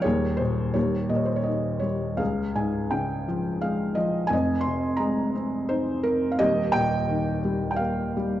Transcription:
0.02 D#1 D#2 G#4 C#5
0.37 A#2 C5
0.74 D#1 D#2 G4 C#5
1.09 A#2 D#5
1.16 C#5
1.25 C5
1.36 C#5
1.44 D#3 D#5
1.79 G3 C#5
2.17 C#2 G#4 F5
2.55 G#2 G#5
2.91 C#3 G5
3.28 F3
3.61 G#3 F5
3.95 F3 D#5
4.27 F1 F2 G#5
4.33 D#5
4.61 C6
4.66 C3
4.97 G#3 A#5
5.35 C4
5.69 D#4 C5
6.03 C4 A#4
6.32 F5
6.39 D#1 D#2 G4 D#5
6.72 A#2 G5
7.09 D#3
7.45 G3
7.71 G5
7.76 A#3 F5
8.17 G3

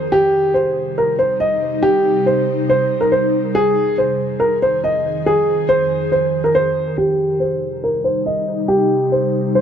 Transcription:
0.12 C3 G3 D#4 G4
0.54 C5
0.98 A#4
1.19 C5
1.40 D#5
1.83 G4
2.26 C5
2.70 C5
3.01 A#4
3.12 C5
3.55 F2 D#3 G#4
3.98 C5
4.40 A#4
4.62 C5
4.84 D#5
5.26 G#4
5.69 C5
6.12 C5
6.44 A#4
6.55 C5
6.98 C3 G3 D#4 G4
7.40 C5
7.84 A#4
8.04 C5
8.26 D#5
8.68 G4
9.12 C5
9.55 C5

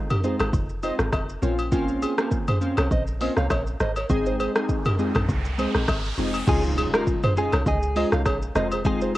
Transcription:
0.10 G4 A#4, mid tom, high agogo, shaker
0.23 G#3 C4 D#4 F4 G#4 C5, shaker
0.40 G#1, cross-stick, high agogo, shaker
0.53 F1, kick, shaker
0.69 shaker
0.83 G#3 C4 D#4 F4 C5 D#5, high agogo, shaker
0.99 G#1, cross-stick, shaker
1.13 F1, kick, cross-stick, high agogo, low woodblock, shaker
1.29 shaker
1.42 A#1 A#3 C4 C#4 F4 A#4 C#5, shaker
1.59 high agogo, shaker
1.72 A#3 C4 C#4 F4, kick, shaker
1.88 shaker
2.02 F4 G#4, high agogo, shaker
2.18 A#3 C4 C#4 F4 G4 A#4, cross-stick, shaker
2.31 kick, shaker
2.48 G#4 C5, mid tom, high agogo, shaker
2.61 A#3 C4 C#4 F4, shaker
2.77 C2 A#4 C#5, cross-stick, high agogo, shaker
2.91 A#1 C5 D#5, kick, shaker
3.07 shaker
3.20 A#3 C4 C#4 F4 C5 D#5, open hi-hat, high agogo, shaker
3.37 C2 C#5 F5, cross-stick, shaker
3.50 A#1 A#4 C#5, kick, cross-stick, high agogo, low woodblock, shaker
3.67 shaker
3.80 G#1 C5 D#5, cross-stick, shaker
3.96 A#4 C#5, high agogo, shaker
4.10 G#1 G#3 C4 D#4 G#4, kick, riser, shaker
4.26 G#4 C5, shaker
4.40 G#4 C5, high agogo, shaker
4.56 G#3 C4 D#4 G#4, cross-stick, shaker
4.69 kick, shaker
4.85 G4 A#4, mid tom, high agogo, shaker
4.98 G#3 C4 D#4 F4 G#4, shaker
5.15 A#1, cross-stick, mid tom, high agogo, shaker
5.29 C2, kick, shaker
5.45 shaker
5.58 G#3 C4 D#4 G#4 C5, high agogo, shaker
5.74 A#1, cross-stick, shaker
5.88 G#1, kick, cross-stick, high agogo, low woodblock, shaker
6.05 shaker
6.18 F1 G#3 C4 D#4 F4 G#4, shaker
6.34 high agogo, shaker
6.47 C#2 G#3 C#4 D#4 F4 G#4, kick, crash, impact, shaker
6.64 shaker
6.78 F4 G#4, high agogo, shaker
6.93 G#3 C#4 D#4 F4 G4 A#4, cross-stick, shaker
7.07 kick, shaker
7.23 G#4 C5, mid tom, high agogo, shaker
7.37 G#3 C#4 D#4 F4 G#4, shaker
7.52 C2 A#4 C#5, cross-stick, high agogo, shaker
7.66 C#2 G#4 D#5, kick, shaker
7.82 shaker
7.96 G#3 C#4 D#4 F4 C5 D#5, open hi-hat, high agogo, shaker
8.12 C2 C#5 F5, cross-stick, shaker
8.25 A#1 G#4 C#5, kick, cross-stick, high agogo, shaker
8.42 shaker
8.55 F1 G#3 C4 D#4 F4 C5 D#5, cross-stick, shaker
8.72 G#4 C5, high agogo, shaker
8.85 G#3 C4 D#4 F4 G#4, kick, shaker
9.01 G#4 C5, shaker

